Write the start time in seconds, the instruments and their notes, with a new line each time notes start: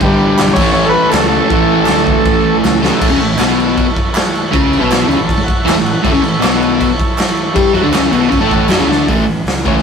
0.00 fingered electric bass G1, distorted electric guitar G2 D3, transistor combo organ G4, kick, crash
0.04 distorted electric guitar G3, transistor combo organ B4 D5
0.37 fingered electric bass B1, snare, clap, crash
0.53 fingered electric bass A1, distorted electric guitar A2, transistor combo organ E4 A4 C#5, kick, crash
0.58 distorted electric guitar E3 A3, transistor combo organ C#5
0.73 fingered electric bass A1, transistor combo organ C#5, crash
0.86 transistor combo organ A4 B4
1.09 fingered electric bass C#2, transistor combo organ A4, clap, crash
1.14 snare
1.28 transistor combo organ A4
1.48 fingered electric bass A1, distorted electric guitar A2 E3, transistor combo organ E4 A4 C#5, kick, crash
1.52 distorted electric guitar A3
1.86 fingered electric bass D2, snare, clap, crash
2.07 kick
2.25 fingered electric bass A1, kick, crash
2.63 fingered electric bass C#2, snare, clap
2.81 distorted electric guitar E3 A3, snare
2.85 distorted electric guitar A2
2.99 fingered electric bass A1, distorted electric guitar A2 A3, transistor combo organ E4 C#5, kick, crash
3.03 transistor combo organ A4
3.10 fingered electric bass C#2, distorted electric guitar C#3 C#4
3.19 fingered electric bass A1, distorted electric guitar A2, crash
3.38 fingered electric bass B1, distorted electric guitar B2 B3, snare, clap, crash
3.60 crash
3.78 kick, crash
3.96 kick, crash
4.15 snare, clap, crash
4.35 crash
4.52 fingered electric bass C#2, distorted electric guitar C#3 C#4, kick, crash
4.73 crash
4.80 fingered electric bass B1, distorted electric guitar B2 B3
4.91 snare, clap, crash
5.08 fingered electric bass C#2, distorted electric guitar C#3 C#4, transistor combo organ B5, crash
5.17 fingered electric bass A1, distorted electric guitar A2
5.27 transistor combo organ A5, kick, crash
5.38 muted distorted electric guitar stroke, muted fingered electric bass stroke
5.44 transistor combo organ F#5
5.48 kick, crash
5.61 distorted electric guitar E3, transistor combo organ E5
5.65 fingered electric bass E2, distorted electric guitar E4, clap, crash
5.69 snare
5.75 fingered electric bass A1, distorted electric guitar A2
5.84 transistor combo organ F#5, crash
6.01 fingered electric bass A1, distorted electric guitar A2 A3, transistor combo organ E4 A4 C#5, kick, crash
6.12 fingered electric bass C#2, distorted electric guitar C#3 C#4
6.22 fingered electric bass A1, distorted electric guitar A2, crash
6.39 fingered electric bass B1, distorted electric guitar B2 B3, clap, crash
6.44 snare
6.63 crash
6.81 kick, crash
7.00 kick, crash
7.18 snare, clap, crash
7.37 crash
7.54 fingered electric bass G2, distorted electric guitar G3 G4, kick, crash
7.73 fingered electric bass F#2, distorted electric guitar F#3 F#4, crash
7.83 fingered electric bass D2, distorted electric guitar D3 D4
7.93 fingered electric bass C#2, distorted electric guitar C#3 C#4, snare, clap, crash
8.11 fingered electric bass B1, distorted electric guitar B2 B3, crash
8.29 fingered electric bass C#2, distorted electric guitar C#3 C#4, kick, crash
8.39 fingered electric bass A1, distorted electric guitar A2 A3
8.51 transistor combo organ F#5, kick, crash
8.68 fingered electric bass F#2, distorted electric guitar F#3 F#4, transistor combo organ G#5, snare, clap, crash
8.79 fingered electric bass C#2, distorted electric guitar C#3 C#4
8.87 fingered electric bass D2, distorted electric guitar D3 D4
8.92 transistor combo organ A5, snare
9.08 fingered electric bass A1, distorted electric guitar A2 E3 A3, kick, open hi-hat
9.46 fingered electric bass C#2, snare, open hi-hat
9.65 distorted electric guitar A2 E3 A3, transistor combo organ C#5, kick
9.78 snare